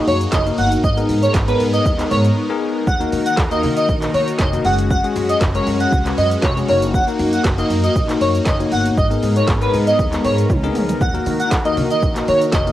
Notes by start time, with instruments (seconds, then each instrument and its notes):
Already playing: tine electric piano A#3 D#4 F#4 G#4, supersaw synth A#3 D#4 F#4
0.07 upright bass F#2, digital synth lead C#5, open hi-hat, shaker
0.21 closed hi-hat, shaker
0.32 upright bass F#1, digital synth lead D#5, kick, snare, clap, shaker
0.46 tine electric piano A#3 D#4 F#4 A#4, closed hi-hat, shaker
0.58 upright bass G1, digital synth lead F#5, open hi-hat, shaker
0.72 closed hi-hat, shaker
0.84 upright bass G#1, supersaw synth G#3 B3 A#4, digital synth lead D#5, kick, shaker
0.97 tine electric piano B3 D#4 G#4 A#4, closed hi-hat, shaker
1.09 upright bass G#2, open hi-hat, shaker
1.23 digital synth lead C#5, closed hi-hat, shaker
1.34 upright bass G#1, kick, snare, clap, shaker
1.48 tine electric piano B3 D#4 G#4 A#4, digital synth lead B4, closed hi-hat, shaker
1.60 upright bass G#2, open hi-hat, shaker
1.73 digital synth lead D#5, closed hi-hat, shaker
1.85 upright bass D#2, kick, shaker
1.99 tine electric piano B3 D#4 G#4 A#4, clap, closed hi-hat, shaker
2.11 upright bass G#2, digital synth lead C#5, open hi-hat, shaker
2.24 closed hi-hat, shaker
2.49 tine electric piano B3 D#4 G#4 A#4
2.87 upright bass D#2, supersaw synth D#3 D#4 F#4 A#4, digital synth lead F#5, kick, shaker
3.00 tine electric piano A#3 D#4 F#4 A#4, closed hi-hat, shaker
3.12 upright bass D#3, open hi-hat, shaker
3.26 digital synth lead F#5, closed hi-hat, shaker
3.37 upright bass D#2, kick, snare, clap, shaker
3.51 tine electric piano A#3 D#4 F#4 A#4, digital synth lead D#5, closed hi-hat, shaker
3.63 upright bass D#3, open hi-hat, shaker
3.77 digital synth lead D#5, closed hi-hat, shaker
3.89 upright bass A#1, kick, shaker
4.02 tine electric piano A#3 D#4 F#4 A#4, clap, closed hi-hat, shaker
4.14 upright bass D#3, digital synth lead C#5, open hi-hat, shaker
4.28 closed hi-hat, shaker
4.39 upright bass F1, digital synth lead D#5, kick, snare, clap, shaker
4.53 tine electric piano A#3 D#4 F#4 A#4, closed hi-hat, shaker
4.65 upright bass F#1, tine electric piano G#3 C#4 F#4 G#4, supersaw synth G#3 C#4, digital synth lead F#5, open hi-hat, shaker
4.79 closed hi-hat, shaker
4.90 digital synth lead F#5, kick, shaker
5.04 tine electric piano G#3 C#4 F#4 G#4, closed hi-hat, shaker
5.16 upright bass F#2, open hi-hat, shaker
5.29 digital synth lead D#5, closed hi-hat, shaker
5.41 upright bass F#1, kick, snare, clap, shaker
5.55 tine electric piano G#3 C#4 F#4 A#4, digital synth lead C#5, closed hi-hat, shaker
5.67 upright bass F#2, open hi-hat, shaker
5.80 digital synth lead F#5, closed hi-hat, shaker
5.92 upright bass C#2, kick, shaker
6.06 tine electric piano G#3 C#4 F#4 B4, clap, closed hi-hat, shaker
6.18 upright bass F#2, digital synth lead D#5, open hi-hat, shaker
6.31 closed hi-hat, shaker
6.42 upright bass F1, digital synth lead C#5, kick, snare, clap, shaker
6.56 tine electric piano G#3 C#4 F#4 G#4, closed hi-hat, shaker
6.68 upright bass F#1, tine electric piano A#3 D#4 F#4 A#4, supersaw synth A#3 D#4, digital synth lead C#5, open hi-hat, shaker
6.82 closed hi-hat, shaker
6.94 digital synth lead F#5, kick, shaker
7.07 tine electric piano A#3 D#4 F#4 A#4, closed hi-hat, shaker
7.19 upright bass F#2, open hi-hat, shaker
7.33 digital synth lead F#5, closed hi-hat, shaker
7.44 upright bass F#1, kick, snare, clap, shaker
7.58 tine electric piano A#3 D#4 F#4 A#4, digital synth lead D#5, closed hi-hat, shaker
7.70 upright bass F#2, open hi-hat, shaker
7.84 digital synth lead D#5, closed hi-hat, shaker
7.96 upright bass A#1, kick, shaker
8.09 tine electric piano A#3 D#4 F#4 A#4, clap, closed hi-hat, shaker
8.21 upright bass F#2, digital synth lead C#5, open hi-hat, shaker
8.35 closed hi-hat, shaker
8.45 upright bass F#1, digital synth lead D#5, kick, snare, clap, shaker
8.60 tine electric piano A#3 D#4 F#4 C#5, closed hi-hat, shaker
8.72 upright bass G1, digital synth lead F#5, open hi-hat, shaker
8.86 closed hi-hat, shaker
8.97 upright bass G#1, supersaw synth G#3 B3 A#4, digital synth lead D#5, kick, shaker
9.10 tine electric piano B3 D#4 G#4 A#4, closed hi-hat, shaker
9.23 upright bass G#2, open hi-hat, shaker
9.36 digital synth lead C#5, closed hi-hat, shaker
9.47 upright bass G#1, kick, snare, clap, shaker
9.61 tine electric piano B3 D#4 G#4 A#4, digital synth lead B4, closed hi-hat, shaker
9.74 upright bass G#2, open hi-hat, shaker
9.87 digital synth lead D#5, closed hi-hat, shaker
9.99 upright bass D#2, kick, shaker
10.12 tine electric piano B3 D#4 G#4 A#4, clap, closed hi-hat, shaker
10.24 upright bass G#2, digital synth lead C#5, open hi-hat, shaker
10.38 closed hi-hat, shaker
10.50 upright bass C#2, kick, high tom, shaker
10.63 tine electric piano B3 D#4 G#4 A#4, closed hi-hat, mid tom, shaker
10.75 upright bass D2, mid tom, open hi-hat, shaker
10.89 closed hi-hat, floor tom, shaker
11.01 upright bass D#2, supersaw synth D#3 D#4 F#4, digital synth lead F#5, kick, shaker
11.14 tine electric piano A#3 D#4 F#4 A#4, closed hi-hat, shaker
11.26 upright bass D#3, open hi-hat, shaker
11.40 digital synth lead F#5, closed hi-hat, shaker
11.51 upright bass D#2, kick, snare, clap, shaker
11.65 tine electric piano A#3 D#4 F#4 A#4, digital synth lead D#5, closed hi-hat, shaker
11.77 upright bass D#3, open hi-hat, shaker
11.91 digital synth lead D#5, closed hi-hat, shaker
12.02 upright bass A#1, kick, shaker
12.16 tine electric piano A#3 D#4 F#4 A#4, clap, closed hi-hat, shaker
12.28 upright bass D#3, digital synth lead C#5, open hi-hat, shaker
12.41 closed hi-hat, shaker
12.52 upright bass F1, digital synth lead D#5, kick, snare, clap, shaker
12.67 tine electric piano A#3 D#4 F#4 A#4, closed hi-hat, shaker